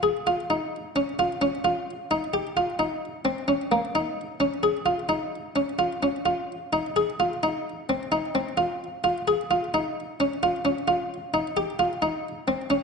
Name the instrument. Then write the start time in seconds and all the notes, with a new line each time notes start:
harpsichord
0.03 G#4
0.27 F4
0.50 D#4
0.96 C#4
1.19 F4
1.41 C#4
1.64 F4
2.11 D#4
2.34 G4
2.57 F4
2.79 D#4
3.25 C4
3.48 C#4
3.72 A#3
3.95 D#4
4.40 C#4
4.63 G#4
4.86 F4
5.09 D#4
5.56 C#4
5.79 F4
6.03 C#4
6.26 F4
6.73 D#4
6.96 G#4
7.20 F4
7.43 D#4
7.89 C4
8.12 D#4
8.35 C4
8.57 F4
9.04 F4
9.28 G#4
9.51 F4
9.74 D#4
10.20 C#4
10.43 F4
10.65 C#4
10.88 F4
11.34 D#4
11.57 G4
11.79 F4
12.02 D#4
12.48 C4
12.70 C#4